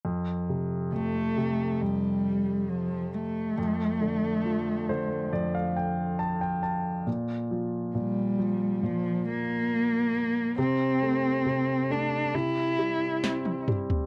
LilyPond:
<<
  \new Staff \with { instrumentName = "Cello" } { \time 4/4 \key f \major \tempo 4 = 68 r4 a4 g4 f8 a8~ | a2~ a8 r4. | r4 g4 f8 bes4. | c'4. d'8 e'4. r8 | }
  \new Staff \with { instrumentName = "Grand piano" } { \time 4/4 \key f \major r1 | r4. c''8 d''16 f''16 g''8 a''16 g''16 a''8 | r1 | r1 | }
  \new Staff \with { instrumentName = "Grand piano" } { \clef bass \time 4/4 \key f \major f,8 c8 f,8 c8 f,2 | f,8 d8 f8 d8 f,2 | bes,8 f8 bes,8 f8 bes,2 | c8 a8 c8 a8 c8 g8 c'8 g8 | }
  \new DrumStaff \with { instrumentName = "Drums" } \drummode { \time 4/4 r4 r4 r4 r4 | r4 r4 r4 r4 | r4 r4 r4 r4 | r4 r4 r4 sn16 tommh16 toml16 tomfh16 | }
>>